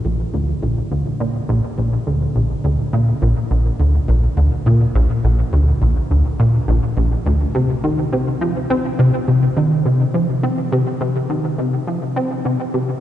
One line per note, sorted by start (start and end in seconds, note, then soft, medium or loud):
0.05 0.25 A#1 medium
0.34 0.54 D2 medium
0.62 0.82 A#1 medium
0.91 1.03 D2 medium
1.20 1.40 A#2 medium
1.49 1.61 A#1 loud
1.78 1.98 A#1 medium
2.07 2.27 D2 medium
2.36 2.56 A#1 medium
2.64 2.76 D2 medium
2.93 3.13 A#2 medium
3.22 3.34 A#1 loud
3.51 3.71 A#1 medium
3.80 4.00 D2 medium
4.08 4.28 A#1 medium
4.37 4.49 D2 medium
4.66 4.86 A#2 medium
4.95 5.07 A#1 medium
5.24 5.44 A#1 medium
5.53 5.73 D2 medium
5.82 6.02 A#1 medium
6.11 6.23 D2 medium
6.40 6.59 A#2 medium
6.68 6.80 A#1 medium
6.97 7.17 A#1 medium
7.26 7.46 D2 medium
7.55 7.75 C3 medium
7.84 8.04 D#3 medium
8.12 8.32 C3 medium
8.41 8.53 F3 medium
8.70 8.90 C4 medium
8.99 9.11 C3 medium
9.28 9.48 C3 medium
9.57 9.77 D#3 medium
9.85 10.05 C3 medium
10.14 10.26 F3 medium
10.43 10.63 C4 medium
10.72 10.84 C3 loud
11.01 11.21 C3 medium
11.30 11.50 D#3 medium
11.58 11.78 C3 medium
11.87 11.99 F3 medium
12.16 12.36 C4 medium
12.45 12.57 C3 medium
12.74 12.94 C3 medium